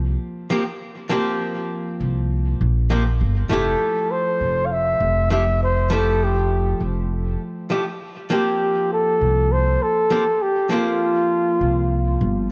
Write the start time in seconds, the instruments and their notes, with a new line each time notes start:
Already playing: upright bass C2, hollow-body jazz guitar F3 A#3 C4 G4
0.50 hollow-body jazz guitar F3 A#3 C4 G4
1.10 hollow-body jazz guitar F3 A#3 C4 G4
2.00 upright bass C2
2.61 upright bass A#1
2.90 hollow-body jazz guitar F3 A#3 C4 G4
3.21 upright bass G1
3.49 upright bass F1, hollow-body jazz guitar F3 A3 E4 G4, flugelhorn A4
4.11 flugelhorn C5
4.41 upright bass F1
4.66 flugelhorn F5
4.72 flugelhorn E5
5.00 upright bass F1
5.30 hollow-body jazz guitar F3 A3 E4 G4, flugelhorn E5
5.64 flugelhorn C5
5.90 hollow-body jazz guitar F3 A3 E4 G4, flugelhorn A4
6.24 flugelhorn G4
6.80 upright bass F1
7.70 hollow-body jazz guitar F3 A3 E4 G4
8.30 hollow-body jazz guitar F3 A#3 C4 G4, flugelhorn G4
8.93 flugelhorn A4
9.21 upright bass C2
9.52 flugelhorn C5
9.83 flugelhorn A4
10.10 hollow-body jazz guitar F3 A#3 C4 G4
10.42 flugelhorn G4
10.70 hollow-body jazz guitar F3 A#3 C4 G4, flugelhorn F4
11.61 upright bass C2
12.21 upright bass G1